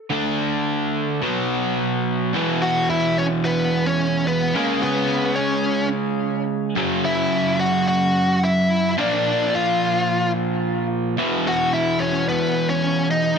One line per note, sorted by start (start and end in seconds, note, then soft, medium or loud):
0.10 1.20 D3 medium
0.10 1.21 A3 medium
0.10 1.21 D4 medium
1.22 2.31 B2 medium
1.22 2.32 F#3 medium
1.22 2.33 B3 medium
2.33 4.53 E2 medium
2.33 4.53 B2 medium
2.33 4.54 E3 loud
2.62 2.87 F#4 medium
2.62 2.89 F#5 loud
2.90 3.15 E4 medium
2.90 3.18 E5 loud
3.18 3.26 C#4 medium
3.18 3.25 C#5 loud
3.45 3.83 B3 medium
3.45 3.87 B4 loud
3.86 4.24 C#4 medium
3.86 4.27 C#5 loud
4.27 4.53 B3 medium
4.27 4.56 B4 medium
4.54 6.73 C#3 medium
4.54 6.74 G#3 medium
4.54 4.81 A#3 medium
4.54 6.75 C#4 loud
4.54 4.82 A#4 medium
4.83 5.34 B3 medium
4.83 5.39 B4 medium
5.36 5.88 C#4 medium
5.36 5.88 C#5 medium
6.76 8.94 F#2 medium
6.76 8.95 C#3 loud
6.76 8.96 F#3 loud
7.05 7.55 E4 medium
7.05 7.60 E5 loud
7.59 7.84 F#4 medium
7.59 7.87 F#5 loud
7.87 8.38 F#4 medium
7.87 8.44 F#5 loud
8.43 8.94 E4 medium
8.43 8.94 E5 medium
8.97 11.15 A#2 medium
8.97 11.16 F3 medium
8.97 11.16 A#3 loud
8.97 9.49 D4 medium
8.97 9.55 D5 loud
9.54 10.31 F4 medium
9.54 10.32 F5 medium
11.17 13.35 E2 medium
11.17 13.35 B2 medium
11.17 13.36 E3 loud
11.47 11.71 F#4 medium
11.47 11.72 F#5 medium
11.73 11.98 E4 medium
11.73 12.01 E5 medium
11.99 12.25 C#4 medium
11.99 12.28 C#5 medium
12.29 12.66 B3 medium
12.29 12.69 B4 loud
12.69 13.07 C#4 medium
12.69 13.07 C#5 medium
13.11 13.36 D#4 medium
13.11 13.38 D#5 loud